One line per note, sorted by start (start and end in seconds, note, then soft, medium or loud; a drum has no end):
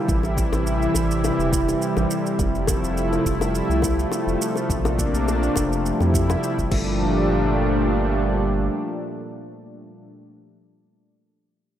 0.00 4.66 C3 medium
0.00 2.37 E3 medium
0.00 4.66 G3 medium
0.00 2.36 E4 medium
0.00 2.35 A4 medium
0.08 0.45 A1 medium
0.08 kick loud
0.08 shaker soft
0.23 high bongo soft
0.23 shaker soft
0.37 kick medium
0.37 shaker medium
0.52 0.88 A1 medium
0.52 high bongo medium
0.52 shaker soft
0.67 shaker soft
0.82 shaker soft
0.95 1.31 A1 medium
0.95 kick medium
0.95 high bongo soft
0.95 shaker medium
1.11 shaker soft
1.24 high bongo medium
1.24 shaker soft
1.39 1.74 E1 medium
1.39 shaker soft
1.53 kick medium
1.53 shaker medium
1.68 high bongo soft
1.68 shaker soft
1.82 shaker soft
1.97 2.06 A1 medium
1.97 high bongo medium
1.97 shaker soft
2.11 shaker medium
2.26 shaker soft
2.39 2.75 F1 loud
2.39 6.68 F3 medium
2.39 6.68 A3 medium
2.39 4.68 E4 medium
2.39 kick loud
2.39 high bongo soft
2.39 shaker soft
2.55 shaker soft
2.67 kick medium
2.67 high bongo medium
2.67 shaker medium
2.83 3.19 F1 medium
2.83 shaker soft
2.97 shaker soft
3.13 high bongo soft
3.13 shaker soft
3.25 3.62 F1 medium
3.25 kick medium
3.25 shaker medium
3.41 high bongo medium
3.41 shaker soft
3.55 shaker soft
3.69 4.05 C2 medium
3.69 shaker soft
3.82 kick medium
3.82 high bongo soft
3.82 shaker medium
3.99 shaker soft
4.11 high bongo medium
4.11 shaker soft
4.27 4.36 F1 medium
4.27 shaker soft
4.42 shaker medium
4.56 high bongo soft
4.56 shaker soft
4.69 5.06 A#1 medium
4.69 6.70 C3 medium
4.69 5.84 A#3 medium
4.69 5.84 D4 medium
4.69 kick loud
4.69 shaker soft
4.85 high bongo medium
4.85 shaker soft
4.99 kick medium
4.99 shaker medium
5.13 5.49 A#1 medium
5.13 shaker soft
5.28 high bongo soft
5.28 shaker soft
5.43 shaker soft
5.56 5.93 F1 medium
5.56 kick medium
5.56 high bongo medium
5.56 shaker medium
5.73 shaker soft
5.85 6.71 G3 medium
5.85 6.71 E4 medium
5.85 shaker soft
6.00 6.36 F2 medium
6.00 high bongo soft
6.00 shaker soft
6.14 kick medium
6.14 shaker medium
6.30 high bongo medium
6.30 shaker soft
6.43 shaker soft
6.58 6.71 F1 medium
6.58 kick soft
6.58 shaker soft
6.71 8.69 G1 medium
6.71 10.07 A#2 medium
6.71 10.07 F3 medium
6.71 10.07 G3 medium
6.71 10.07 A3 medium
6.71 10.07 D4 medium
6.71 kick loud
6.71 crash medium
6.71 high bongo soft